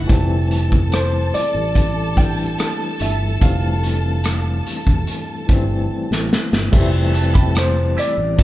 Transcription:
0.00 0.07 E3 medium
0.00 0.11 G#3 medium
0.00 0.12 A#3 medium
0.00 0.11 D#4 medium
0.07 1.30 F1 medium
0.07 1.13 E3 medium
0.07 1.14 G3 medium
0.07 1.15 A3 medium
0.07 1.15 C4 medium
0.07 6.27 A4 medium
0.07 6.27 A5 medium
0.07 kick loud
0.07 closed hi-hat medium
0.51 closed hi-hat medium
0.72 kick medium
0.92 1.36 C5 medium
0.92 cross-stick medium
0.92 closed hi-hat medium
1.34 2.20 D5 loud
1.34 muted fingered electric bass stroke soft
1.34 closed hi-hat medium
1.55 2.54 A1 medium
1.75 kick medium
1.75 closed hi-hat medium
2.15 2.95 E3 medium
2.15 2.95 G3 medium
2.15 2.96 A3 medium
2.15 2.97 D4 medium
2.15 3.03 G5 medium
2.15 kick medium
2.15 closed hi-hat medium
2.37 closed hi-hat soft
2.58 cross-stick medium
2.58 closed hi-hat medium
3.00 3.36 G1 medium
3.00 3.39 E5 medium
3.00 closed hi-hat medium
3.39 4.62 F1 medium
3.39 4.45 E3 medium
3.39 4.46 G3 medium
3.39 4.46 A3 medium
3.39 4.47 C4 medium
3.39 6.28 F5 medium
3.39 kick medium
3.39 closed hi-hat medium
3.83 closed hi-hat medium
4.24 cross-stick loud
4.24 closed hi-hat medium
4.67 closed hi-hat medium
4.87 5.05 E1 medium
4.87 kick medium
5.07 closed hi-hat medium
5.47 5.85 G1 medium
5.47 6.26 E3 medium
5.47 6.27 G3 medium
5.47 6.27 A3 medium
5.47 6.28 C4 medium
5.47 kick medium
5.47 closed hi-hat medium
5.90 muted fingered electric bass stroke soft
6.11 6.29 A1 medium
6.11 snare soft
6.33 snare medium
6.52 6.70 G1 medium
6.52 snare medium
6.71 7.93 F1 medium
6.71 7.77 E3 medium
6.71 7.77 G3 medium
6.71 6.90 A3 medium
6.71 7.78 A3 medium
6.71 7.79 C4 medium
6.71 6.90 E4 medium
6.71 6.90 G4 medium
6.71 7.95 A4 medium
6.71 7.95 A5 medium
6.71 kick loud
6.71 crash medium
7.13 muted clean electric guitar stroke soft
7.13 closed hi-hat medium
7.34 7.49 A3 soft
7.34 7.48 E4 soft
7.34 7.48 G4 medium
7.34 kick medium
7.55 7.96 C5 medium
7.55 muted clean electric guitar stroke soft
7.55 cross-stick loud
7.55 closed hi-hat medium
7.76 muted clean electric guitar stroke soft
7.97 8.14 A3 medium
7.97 8.14 E4 medium
7.97 8.15 G4 medium
7.97 8.43 D5 medium
7.97 muted fingered electric bass stroke soft
7.97 closed hi-hat medium
8.17 8.36 A1 medium
8.17 muted clean electric guitar stroke soft
8.36 8.43 D2 medium
8.36 8.43 F3 medium
8.36 8.43 F#3 medium
8.36 8.43 A#3 medium
8.36 8.43 C4 medium
8.36 8.43 A#4 medium
8.36 8.43 A#5 medium
8.36 muted clean electric guitar stroke soft
8.36 kick medium
8.36 closed hi-hat medium

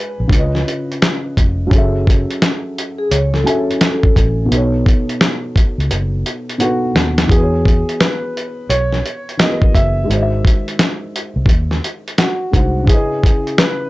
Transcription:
0.00 0.27 G#3 medium
0.00 0.28 D4 medium
0.00 0.30 F#4 medium
0.00 0.31 B4 medium
0.00 1.33 B4 medium
0.00 0.33 G#5 medium
0.20 0.29 A#1 medium
0.27 0.62 C#2 loud
0.27 1.66 C#3 medium
0.27 1.68 C#4 medium
0.27 kick medium
0.33 1.69 F4 medium
0.33 1.71 B4 medium
0.33 closed hi-hat medium
0.39 1.72 D#5 medium
0.55 snare soft
0.68 closed hi-hat medium
0.92 closed hi-hat soft
1.02 snare loud
1.02 closed hi-hat medium
1.37 1.69 F1 loud
1.37 kick medium
1.37 closed hi-hat medium
1.67 3.40 F#3 medium
1.67 3.42 C#4 medium
1.71 2.25 F#1 loud
1.71 3.43 G#4 medium
1.71 3.44 A4 medium
1.71 kick loud
1.71 closed hi-hat medium
1.78 3.46 E5 medium
2.07 kick medium
2.07 closed hi-hat medium
2.31 closed hi-hat soft
2.42 snare loud
2.42 closed hi-hat medium
2.78 closed hi-hat medium
2.98 3.10 G#4 medium
3.11 3.43 C#2 medium
3.11 3.33 C#5 medium
3.11 closed hi-hat medium
3.34 4.34 A4 medium
3.34 snare soft
3.44 4.50 F#3 medium
3.44 4.50 C#4 medium
3.44 4.51 G#5 soft
3.44 closed hi-hat medium
3.48 4.52 A4 medium
3.48 4.52 E5 medium
3.71 closed hi-hat soft
3.81 snare loud
3.81 closed hi-hat medium
4.03 kick medium
4.16 4.48 A1 medium
4.16 kick medium
4.16 closed hi-hat medium
4.46 6.53 B2 medium
4.46 6.55 B3 medium
4.51 4.83 B1 medium
4.51 6.56 D#4 medium
4.51 6.58 A4 medium
4.51 closed hi-hat medium
4.57 6.59 C#5 medium
4.86 kick medium
4.86 closed hi-hat medium
5.09 closed hi-hat soft
5.21 snare loud
5.21 closed hi-hat medium
5.56 kick medium
5.56 closed hi-hat medium
5.78 5.89 C#2 medium
5.78 closed hi-hat soft
5.91 6.22 F#1 medium
5.91 closed hi-hat medium
6.26 closed hi-hat medium
6.49 closed hi-hat soft
6.58 7.29 B2 soft
6.58 7.26 B3 soft
6.58 7.30 D#4 soft
6.58 7.26 F#4 medium
6.58 closed hi-hat medium
6.62 7.31 A4 soft
6.62 7.32 B4 medium
6.95 7.27 D#2 medium
6.95 snare medium
6.95 closed hi-hat medium
7.18 snare medium
7.18 closed hi-hat soft
7.25 9.33 E3 medium
7.25 9.34 B3 medium
7.29 7.83 E2 loud
7.29 9.35 F#4 medium
7.29 8.02 G#4 medium
7.29 9.37 G#4 medium
7.29 kick loud
7.29 closed hi-hat medium
7.36 7.41 B4 medium
7.42 9.41 C#5 medium
7.65 kick medium
7.65 closed hi-hat medium
7.89 closed hi-hat soft
8.00 8.72 B4 medium
8.00 snare loud
8.00 closed hi-hat medium
8.37 closed hi-hat medium
8.69 9.01 B1 medium
8.69 9.41 C#5 loud
8.69 closed hi-hat medium
8.92 snare soft
9.06 closed hi-hat medium
9.29 closed hi-hat soft
9.37 10.08 E3 soft
9.37 10.09 B3 soft
9.37 10.08 F#4 soft
9.37 9.72 D#5 medium
9.37 snare loud
9.37 closed hi-hat medium
9.42 10.10 G#4 soft
9.42 9.49 A#4 soft
9.49 10.14 B4 medium
9.62 kick medium
9.75 10.06 F#1 medium
9.75 10.75 E5 loud
9.75 kick medium
9.75 closed hi-hat medium
10.04 12.48 D#3 medium
10.04 12.47 G#3 medium
10.10 10.41 G#1 medium
10.10 12.50 F#4 medium
10.10 12.51 C5 medium
10.10 closed hi-hat medium
10.16 10.21 D#5 medium
10.22 12.56 E5 medium
10.45 kick medium
10.45 closed hi-hat medium
10.68 closed hi-hat soft
10.79 snare loud
10.79 closed hi-hat medium
11.16 closed hi-hat medium
11.36 11.45 C2 medium
11.46 11.79 D#2 loud
11.46 kick medium
11.46 closed hi-hat medium
11.71 snare soft
11.84 closed hi-hat medium
12.08 closed hi-hat soft
12.18 12.90 F#4 medium
12.18 snare loud
12.18 closed hi-hat medium
12.51 12.85 C2 loud
12.51 12.87 G#3 soft
12.51 12.88 D#4 soft
12.51 12.88 F#4 soft
12.51 kick medium
12.51 closed hi-hat medium
12.55 12.89 C5 soft
12.55 12.90 F#5 medium
12.83 13.90 C#3 medium
12.83 13.90 C#4 medium
12.87 13.90 E4 medium
12.87 13.54 G#4 medium
12.87 kick loud
12.87 closed hi-hat medium
12.92 13.90 B4 medium
12.92 13.90 D#5 medium
13.23 kick medium
13.23 closed hi-hat medium
13.47 closed hi-hat soft
13.58 13.90 B4 loud
13.58 snare loud
13.58 closed hi-hat medium

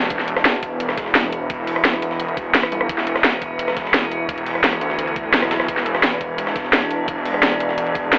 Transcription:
0.02 ride medium
0.10 0.44 E1 loud
0.10 8.19 E3 medium
0.10 8.19 B3 medium
0.10 5.66 E4 loud
0.10 kick loud
0.10 closed hi-hat loud
0.10 ride medium
0.19 snare soft
0.28 closed hi-hat medium
0.28 ride medium
0.37 cross-stick medium
0.37 snare medium
0.45 0.61 E1 loud
0.45 snare loud
0.45 closed hi-hat medium
0.45 ride medium
0.54 closed hi-hat soft
0.63 1.48 E1 loud
0.63 kick medium
0.63 closed hi-hat medium
0.63 ride medium
0.80 closed hi-hat loud
0.80 ride medium
0.89 cross-stick soft
0.89 snare medium
0.98 kick loud
0.98 snare soft
0.98 closed hi-hat medium
0.98 ride medium
1.06 snare soft
1.15 snare loud
1.15 closed hi-hat loud
1.15 ride medium
1.24 ride soft
1.32 closed hi-hat medium
1.32 ride medium
1.50 1.83 E1 loud
1.50 kick loud
1.50 closed hi-hat loud
1.50 ride medium
1.67 closed hi-hat medium
1.67 open hi-hat medium
1.76 cross-stick soft
1.85 2.01 E1 loud
1.85 snare loud
1.85 closed hi-hat medium
1.85 ride medium
1.93 cross-stick soft
1.93 closed hi-hat soft
2.02 2.53 E1 loud
2.02 closed hi-hat medium
2.02 ride medium
2.11 snare soft
2.20 closed hi-hat medium
2.20 ride medium
2.28 ride soft
2.37 kick loud
2.37 closed hi-hat medium
2.37 ride medium
2.55 snare loud
2.55 closed hi-hat loud
2.55 ride medium
2.63 cross-stick medium
2.72 2.88 G1 loud
2.72 closed hi-hat medium
2.72 ride medium
2.81 cross-stick medium
2.89 3.23 E1 loud
2.89 kick loud
2.89 closed hi-hat loud
2.89 ride medium
2.98 snare soft
3.07 closed hi-hat medium
3.07 ride medium
3.16 cross-stick medium
3.16 snare medium
3.24 3.40 E1 loud
3.24 snare loud
3.24 closed hi-hat medium
3.24 ride medium
3.33 closed hi-hat soft
3.42 4.28 E1 loud
3.42 kick medium
3.42 closed hi-hat medium
3.42 ride medium
3.59 closed hi-hat medium
3.59 ride medium
3.68 cross-stick soft
3.68 snare medium
3.77 kick loud
3.77 snare soft
3.77 closed hi-hat medium
3.77 ride medium
3.85 snare soft
3.94 snare loud
3.94 closed hi-hat medium
3.94 ride medium
4.03 ride soft
4.12 closed hi-hat medium
4.12 ride medium
4.29 4.62 E1 loud
4.29 kick loud
4.29 closed hi-hat medium
4.29 ride loud
4.38 closed hi-hat soft
4.46 closed hi-hat medium
4.46 open hi-hat medium
4.55 cross-stick soft
4.64 4.80 E1 loud
4.64 snare loud
4.64 closed hi-hat medium
4.64 ride medium
4.73 cross-stick soft
4.73 closed hi-hat soft
4.81 5.32 D2 loud
4.81 closed hi-hat medium
4.81 ride medium
4.90 snare soft
4.99 closed hi-hat medium
4.99 ride medium
5.07 ride soft
5.16 kick loud
5.16 closed hi-hat medium
5.16 ride medium
5.34 5.67 B1 loud
5.34 snare loud
5.34 closed hi-hat medium
5.34 ride medium
5.42 cross-stick medium
5.42 snare medium
5.51 snare loud
5.51 closed hi-hat medium
5.51 ride medium
5.60 cross-stick medium
5.60 snare soft
5.68 6.02 E1 loud
5.68 8.19 D4 loud
5.68 kick loud
5.68 closed hi-hat medium
5.68 ride medium
5.77 snare soft
5.86 closed hi-hat medium
5.86 ride medium
5.95 cross-stick soft
5.95 snare medium
6.03 6.19 E1 loud
6.03 snare loud
6.03 closed hi-hat medium
6.03 ride medium
6.12 closed hi-hat soft
6.21 7.07 E1 medium
6.21 kick medium
6.21 closed hi-hat medium
6.21 ride medium
6.38 closed hi-hat medium
6.38 ride medium
6.47 cross-stick soft
6.47 snare medium
6.56 kick loud
6.56 snare soft
6.56 closed hi-hat medium
6.56 ride medium
6.64 snare soft
6.73 snare loud
6.73 closed hi-hat medium
6.73 ride medium
6.82 ride soft
6.91 closed hi-hat medium
6.91 ride medium
7.08 7.42 E1 loud
7.08 kick loud
7.08 closed hi-hat medium
7.08 ride medium
7.25 closed hi-hat medium
7.25 open hi-hat medium
7.34 cross-stick soft
7.43 7.59 E1 loud
7.43 snare loud
7.43 closed hi-hat medium
7.43 ride medium
7.52 cross-stick soft
7.52 closed hi-hat soft
7.60 8.11 E1 medium
7.60 closed hi-hat medium
7.60 ride medium
7.69 snare soft
7.78 closed hi-hat medium
7.78 ride medium
7.87 ride soft
7.95 kick loud
7.95 closed hi-hat medium
7.95 ride medium
8.13 snare loud
8.13 closed hi-hat medium
8.13 ride medium

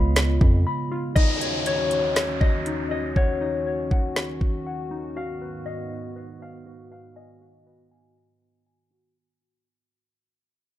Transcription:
0.00 0.39 C#2 loud
0.00 1.12 C#3 medium
0.00 1.12 G#3 medium
0.00 1.12 B3 medium
0.00 0.90 F4 medium
0.00 1.12 F4 medium
0.00 1.16 C#5 medium
0.00 0.94 D#5 loud
0.00 0.58 F5 medium
0.00 0.65 B5 medium
0.16 snare loud
0.16 closed hi-hat medium
0.41 0.65 F2 loud
0.41 kick loud
0.67 1.16 B5 medium
0.92 1.16 F4 loud
1.15 5.12 D#2 medium
1.15 9.12 D#3 medium
1.15 5.12 C#4 medium
1.15 2.66 D#4 medium
1.15 9.12 F#4 medium
1.15 2.40 D#5 medium
1.15 kick loud
1.15 closed hi-hat medium
1.15 downlifter medium
1.41 2.15 C#5 medium
1.41 closed hi-hat medium
1.66 3.16 C#5 medium
1.66 closed hi-hat medium
1.91 closed hi-hat medium
2.16 2.91 C#5 medium
2.16 snare loud
2.16 closed hi-hat medium
2.41 2.91 D#5 medium
2.41 kick loud
2.66 3.40 D#4 medium
2.66 closed hi-hat medium
2.91 3.65 C#5 medium
2.91 4.69 D#5 medium
3.16 5.07 C#5 loud
3.16 3.90 F#5 medium
3.16 kick loud
3.41 4.90 D#4 medium
3.66 5.16 C#5 medium
3.91 4.65 F#5 medium
3.91 kick loud
4.16 snare loud
4.41 kick medium
4.67 5.16 F#5 medium
4.91 5.16 D#4 medium
5.16 9.12 G#2 medium
5.16 9.12 B3 medium
5.16 6.65 F#4 medium
5.16 6.42 F5 medium
5.42 6.15 B4 medium
5.66 7.16 D#5 medium
6.16 6.90 B4 medium
6.42 6.91 F5 medium
6.66 7.40 F#4 medium
6.91 7.65 B4 medium
6.91 8.58 F5 medium
7.16 8.95 D#5 loud
7.16 7.90 G#5 medium
7.42 8.90 F#4 medium
7.66 9.16 B4 medium
7.91 8.65 G#5 medium
8.66 9.16 G#5 medium
8.91 9.16 F#4 medium

